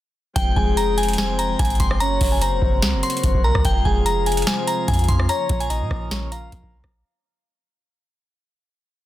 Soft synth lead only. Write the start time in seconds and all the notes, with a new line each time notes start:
0.57 G#4
1.18 C5
2.01 C#5
2.42 C5
3.44 A#4
3.86 G#4
4.47 C5
5.29 C#5
5.70 D#5
6.12 C#5
6.32 F5